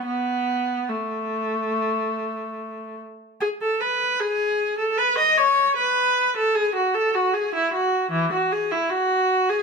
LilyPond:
\new Staff \with { instrumentName = "Viola" } { \time 4/4 \key b \dorian \tempo 4 = 76 b4 a2~ a8 r8 | \key fis \dorian gis'16 a'16 b'8 gis'8. a'16 b'16 dis''16 cis''8 b'8. a'16 | gis'16 fis'16 a'16 fis'16 gis'16 e'16 fis'8 e16 fis'16 gis'16 e'16 fis'8. gis'16 | }